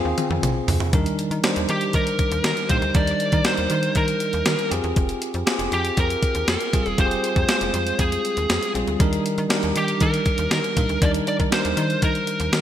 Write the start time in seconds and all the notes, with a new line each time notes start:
Already playing: C4 F4 G#4
0.05 D#2
0.18 closed hi-hat, high tom
0.30 F2, high tom
0.43 A#1, closed hi-hat, mid tom
0.68 D2, floor tom, open hi-hat
0.80 floor tom
0.93 D#2 D#3 G3 D4 D#4 A#4, kick, closed hi-hat
1.06 closed hi-hat
1.19 closed hi-hat
1.31 D#3, closed hi-hat
1.44 G3 D4 D#4 C5, snare, closed hi-hat
1.56 D#2, closed hi-hat
1.69 D#3 G4, closed hi-hat
1.81 closed hi-hat
1.93 D#3 A#4, kick, closed hi-hat
2.07 closed hi-hat
2.19 kick, closed hi-hat
2.32 D#2, closed hi-hat
2.44 D#3 A#4, snare, closed hi-hat
2.57 closed hi-hat
2.69 A#2 G3 D4 D#4 G4 C5, kick, closed hi-hat
2.82 D2, closed hi-hat
2.94 D#2 D#3 G3 D4 D#4 A#4 D5, kick, closed hi-hat
3.07 closed hi-hat
3.20 closed hi-hat
3.32 D#3, kick, closed hi-hat
3.45 G3 D4 D#4 A#4 C5, snare, closed hi-hat
3.57 D#2, closed hi-hat
3.70 D#3, closed hi-hat
3.83 closed hi-hat
3.95 D#3 A#4, kick, closed hi-hat
4.08 closed hi-hat
4.20 closed hi-hat
4.33 D#2, closed hi-hat
4.46 D#3, snare, closed hi-hat
4.59 closed hi-hat
4.71 F2 C4 F4 G4 G#4, closed hi-hat
4.84 E2, closed hi-hat
4.96 F1, kick, closed hi-hat
5.09 closed hi-hat
5.22 closed hi-hat
5.34 F2, closed hi-hat
5.46 C4 F4 G4 G#4, snare, closed hi-hat
5.59 F1, closed hi-hat
5.72 F2 G4, closed hi-hat
5.85 closed hi-hat
5.97 F2 A#4, kick, closed hi-hat
6.10 closed hi-hat
6.23 kick, closed hi-hat
6.35 D#2, closed hi-hat
6.48 F2 A#4, snare, closed hi-hat
6.61 closed hi-hat
6.73 A#1 G3 C4 F4 G#4, kick, closed hi-hat
6.85 E1, closed hi-hat
6.98 F1 C4 F4 G4 C5, kick, closed hi-hat
7.05 G#4
7.11 closed hi-hat
7.24 closed hi-hat
7.36 F2, kick, closed hi-hat
7.48 G#3 C4 F4 G#4 C5, snare, closed hi-hat
7.61 F1, closed hi-hat
7.74 F2, closed hi-hat
7.87 closed hi-hat
7.99 F2 G#4, kick, closed hi-hat
8.12 closed hi-hat
8.25 closed hi-hat
8.37 D#2, closed hi-hat
8.50 F2, snare, closed hi-hat
8.63 closed hi-hat
8.74 A#1 G3 C4 F4 G#4, closed hi-hat
8.87 D2, closed hi-hat
8.99 D#2 D#3 G3 D4 D#4 A#4, kick, closed hi-hat
9.13 closed hi-hat
9.26 closed hi-hat
9.38 D#3, closed hi-hat
9.50 G3 D4 D#4 A#4, snare, closed hi-hat
9.63 D#2, closed hi-hat
9.76 D#3 G4, closed hi-hat
9.88 closed hi-hat
10.00 D#3 A#4, kick, closed hi-hat
10.14 closed hi-hat
10.26 kick, closed hi-hat
10.38 D#2, closed hi-hat
10.51 D#3 A#4, snare, closed hi-hat
10.64 closed hi-hat
10.76 A#2 G3 D4 D#4 A#4, kick, closed hi-hat
10.89 D2, closed hi-hat
11.01 D#2 D#3 G3 D4 D#4 A#4 D5, kick, closed hi-hat
11.14 closed hi-hat
11.27 D5, closed hi-hat
11.39 D#3, kick, closed hi-hat
11.51 G3 D4 D#4 A#4 C5, snare, closed hi-hat
11.65 D#2, closed hi-hat
11.77 D#3, closed hi-hat
11.90 closed hi-hat
12.02 D#3 A#4, kick, closed hi-hat
12.15 closed hi-hat
12.27 closed hi-hat
12.40 D#2, closed hi-hat
12.52 D#3, snare, closed hi-hat